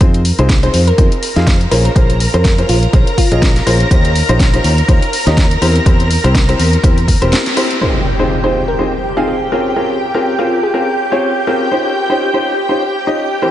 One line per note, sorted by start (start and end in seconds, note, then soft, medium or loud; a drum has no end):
0.01 0.30 F2 loud
0.01 0.19 C4 medium
0.01 0.19 D#4 medium
0.01 0.19 F4 medium
0.01 0.19 G#4 medium
0.01 7.82 A#4 medium
0.01 0.19 C5 medium
0.01 7.82 A#5 medium
0.01 kick loud
0.01 closed hi-hat medium
0.14 closed hi-hat soft
0.25 open hi-hat loud
0.39 0.67 C2 loud
0.39 0.55 C4 medium
0.39 0.55 D#4 medium
0.39 0.55 F4 medium
0.39 0.55 G#4 medium
0.39 0.55 C5 medium
0.39 closed hi-hat soft
0.49 kick loud
0.49 snare loud
0.49 closed hi-hat medium
0.63 0.80 C4 medium
0.63 0.80 D#4 medium
0.63 0.80 F4 medium
0.63 0.80 G#4 medium
0.63 0.80 C5 medium
0.63 0.79 C5 medium
0.63 closed hi-hat soft
0.74 0.90 F2 medium
0.74 open hi-hat loud
0.88 1.03 A#4 medium
0.88 closed hi-hat soft
0.98 1.07 F2 medium
0.98 1.10 C4 medium
0.98 1.10 D#4 medium
0.98 1.10 F4 medium
0.98 1.10 G#4 medium
0.98 1.10 C5 medium
0.98 kick loud
0.98 closed hi-hat medium
1.12 closed hi-hat soft
1.23 open hi-hat loud
1.36 1.65 F2 medium
1.36 1.53 C4 medium
1.36 1.53 D#4 medium
1.36 1.53 F4 medium
1.36 1.53 G#4 medium
1.36 1.53 F5 medium
1.36 snare soft
1.36 closed hi-hat soft
1.47 kick loud
1.47 snare loud
1.47 closed hi-hat medium
1.61 closed hi-hat soft
1.71 1.87 A#1 medium
1.71 1.90 C#4 medium
1.71 1.90 F4 medium
1.71 1.90 G#4 medium
1.71 1.90 A#4 medium
1.71 1.80 A#4 medium
1.71 1.90 C5 medium
1.71 open hi-hat loud
1.85 1.92 A#4 medium
1.85 closed hi-hat soft
1.96 2.25 A#1 loud
1.96 2.14 C#4 medium
1.96 2.14 F4 medium
1.96 2.14 G#4 medium
1.96 2.14 A#4 medium
1.96 2.14 C5 medium
1.96 kick loud
1.96 closed hi-hat medium
2.10 closed hi-hat soft
2.20 open hi-hat loud
2.34 2.62 F2 medium
2.34 2.50 C#4 medium
2.34 2.50 F4 medium
2.34 2.50 G#4 medium
2.34 2.50 A#4 medium
2.34 2.49 A#4 medium
2.34 2.50 C5 medium
2.34 closed hi-hat soft
2.45 kick loud
2.45 snare loud
2.45 closed hi-hat medium
2.58 2.75 C#4 medium
2.58 2.75 F4 medium
2.58 2.75 G#4 medium
2.58 2.75 A#4 medium
2.58 2.75 C5 medium
2.58 closed hi-hat soft
2.69 2.85 A#1 medium
2.69 2.86 F4 medium
2.69 open hi-hat loud
2.83 closed hi-hat soft
2.93 3.02 A#1 medium
2.93 3.06 C#4 medium
2.93 3.06 F4 medium
2.93 3.06 G#4 medium
2.93 3.06 A#4 medium
2.93 3.06 C5 medium
2.93 kick loud
2.93 closed hi-hat medium
3.07 closed hi-hat soft
3.18 3.56 F4 medium
3.18 kick medium
3.18 open hi-hat loud
3.31 3.60 A#1 medium
3.31 3.48 C#4 medium
3.31 3.48 F4 medium
3.31 3.48 G#4 medium
3.31 3.48 A#4 medium
3.31 3.48 D#5 loud
3.31 closed hi-hat soft
3.42 kick loud
3.42 snare loud
3.42 closed hi-hat medium
3.56 snare soft
3.56 closed hi-hat soft
3.67 3.83 A#1 medium
3.67 3.85 C#4 medium
3.67 3.85 F4 medium
3.67 3.85 G#4 medium
3.67 3.85 A#4 medium
3.67 3.85 C5 loud
3.67 open hi-hat loud
3.80 closed hi-hat soft
3.91 4.21 D#2 loud
3.91 4.09 C#4 medium
3.91 4.09 D#4 medium
3.91 4.09 F4 medium
3.91 4.09 G4 medium
3.91 4.09 C5 medium
3.91 kick loud
3.91 closed hi-hat medium
4.05 closed hi-hat soft
4.16 open hi-hat medium
4.29 4.58 A#1 loud
4.29 4.46 C#4 medium
4.29 4.46 D#4 medium
4.29 4.46 F4 medium
4.29 4.46 G4 medium
4.29 4.46 C5 loud
4.29 closed hi-hat soft
4.40 kick loud
4.40 snare loud
4.40 closed hi-hat medium
4.53 4.70 C#4 medium
4.53 4.70 D#4 medium
4.53 4.70 F4 medium
4.53 4.70 G4 medium
4.53 4.70 C5 medium
4.53 closed hi-hat soft
4.64 4.80 D#2 loud
4.64 open hi-hat loud
4.78 closed hi-hat soft
4.88 4.97 D#2 medium
4.88 5.01 C#4 medium
4.88 5.01 D#4 medium
4.88 5.01 F4 medium
4.88 5.01 G4 medium
4.88 5.01 C5 medium
4.88 kick loud
4.88 closed hi-hat medium
5.02 closed hi-hat soft
5.13 open hi-hat loud
5.27 5.55 D#2 medium
5.27 5.43 C#4 medium
5.27 5.43 D#4 medium
5.27 5.43 F4 medium
5.27 5.43 G4 medium
5.27 5.43 D#5 loud
5.27 snare soft
5.27 closed hi-hat soft
5.37 kick loud
5.37 snare loud
5.37 closed hi-hat medium
5.51 closed hi-hat soft
5.62 5.78 E2 medium
5.62 5.80 C4 medium
5.62 5.80 E4 medium
5.62 5.80 G4 medium
5.62 5.80 A#4 medium
5.62 5.80 C5 medium
5.62 open hi-hat medium
5.75 closed hi-hat soft
5.86 6.16 E2 loud
5.86 6.04 C4 medium
5.86 6.04 E4 medium
5.86 6.04 G4 medium
5.86 6.04 A#4 medium
5.86 6.04 C5 medium
5.86 kick loud
5.86 closed hi-hat medium
6.00 closed hi-hat soft
6.11 open hi-hat medium
6.24 6.53 C2 loud
6.24 6.41 C4 medium
6.24 6.41 E4 medium
6.24 6.41 G4 medium
6.24 6.41 A#4 medium
6.24 6.41 C5 loud
6.24 closed hi-hat soft
6.35 kick loud
6.35 snare loud
6.35 closed hi-hat medium
6.49 6.65 C4 medium
6.49 6.65 E4 medium
6.49 6.65 G4 medium
6.49 6.65 A#4 medium
6.49 6.65 C5 medium
6.49 closed hi-hat soft
6.59 6.75 E2 loud
6.59 open hi-hat loud
6.73 closed hi-hat soft
6.84 7.13 E2 loud
6.84 6.96 C4 medium
6.84 6.96 E4 medium
6.84 6.96 G4 medium
6.84 6.96 A#4 medium
6.84 6.96 C5 medium
6.84 kick loud
6.84 closed hi-hat medium
6.98 closed hi-hat soft
7.08 kick medium
7.08 open hi-hat loud
7.22 7.32 E1 loud
7.22 7.38 C4 medium
7.22 7.38 E4 medium
7.22 7.38 G4 medium
7.22 7.38 A#4 medium
7.22 7.38 C5 loud
7.22 closed hi-hat soft
7.33 snare loud
7.33 closed hi-hat medium
7.46 snare soft
7.46 closed hi-hat soft
7.57 7.75 C4 medium
7.57 7.75 E4 medium
7.57 7.75 G4 medium
7.57 7.75 A#4 medium
7.57 7.75 C5 loud
7.57 open hi-hat loud
7.71 closed hi-hat soft
7.81 7.99 C4 medium
7.81 8.00 D#4 medium
7.81 7.99 F4 medium
7.81 13.51 G4 medium
7.81 8.00 G#4 medium
7.81 7.99 C5 medium
7.81 13.51 G5 medium
7.81 impact medium
8.19 8.36 C4 medium
8.19 8.36 D#4 medium
8.19 8.36 F4 medium
8.19 8.36 G#4 medium
8.19 8.36 C5 medium
8.44 8.60 C4 medium
8.44 8.60 D#4 medium
8.44 8.60 F4 medium
8.44 8.60 G#4 medium
8.44 8.59 C5 medium
8.44 8.60 C5 medium
8.68 8.84 A#4 medium
8.79 8.91 C4 medium
8.79 8.91 D#4 medium
8.79 8.91 F4 medium
8.79 8.91 G#4 medium
8.79 8.91 C5 medium
9.17 9.33 C4 medium
9.17 9.33 D#4 medium
9.17 9.33 F4 medium
9.17 9.24 G#4 medium
9.17 9.33 G#4 medium
9.17 9.33 F5 medium
9.28 9.36 G#4 medium
9.52 9.70 C4 medium
9.52 9.70 C#4 medium
9.52 9.70 F4 medium
9.52 9.70 G#4 medium
9.52 9.70 A#4 medium
9.76 9.95 C4 medium
9.76 9.95 C#4 medium
9.76 9.95 F4 medium
9.76 9.95 G#4 medium
9.76 9.95 A#4 medium
10.14 10.31 C4 medium
10.14 10.31 C#4 medium
10.14 10.31 F4 medium
10.14 10.31 G#4 medium
10.14 10.31 A#4 medium
10.39 10.55 C4 medium
10.39 10.55 C#4 medium
10.39 10.60 F4 medium
10.39 10.55 F4 medium
10.39 10.55 G#4 medium
10.39 10.55 A#4 medium
10.63 10.70 G#4 medium
10.74 10.86 C4 medium
10.74 10.86 C#4 medium
10.74 10.86 F4 medium
10.74 10.86 G#4 medium
10.74 10.83 G#4 medium
10.74 10.86 A#4 medium
11.12 11.28 C4 medium
11.12 11.28 C#4 medium
11.12 11.28 F4 medium
11.12 11.28 G#4 medium
11.12 11.28 C#5 medium
11.47 11.65 C4 medium
11.47 11.65 C#4 medium
11.47 11.65 F4 medium
11.47 11.65 G#4 medium
11.47 11.65 A#4 medium
11.71 11.90 C#4 medium
11.71 11.90 D#4 medium
11.71 11.90 F4 medium
11.71 11.90 G4 medium
11.71 11.90 C5 medium
12.10 12.26 C#4 medium
12.10 12.26 D#4 medium
12.10 12.26 F4 medium
12.10 12.26 G4 medium
12.10 12.26 C5 medium
12.34 12.50 C#4 medium
12.34 12.50 D#4 medium
12.34 12.50 F4 medium
12.34 12.50 G4 medium
12.34 12.50 C5 medium
12.69 12.81 C#4 medium
12.69 12.81 D#4 medium
12.69 12.81 F4 medium
12.69 12.81 G4 medium
12.69 12.81 C5 medium
13.07 13.24 C#4 medium
13.07 13.24 D#4 medium
13.07 13.24 F4 medium
13.07 13.24 G4 medium
13.07 13.24 D#5 medium
13.42 13.51 E3 medium
13.42 13.51 C4 medium
13.42 13.51 E4 medium
13.42 13.51 G4 medium
13.42 13.51 A#4 medium
13.42 13.51 C5 medium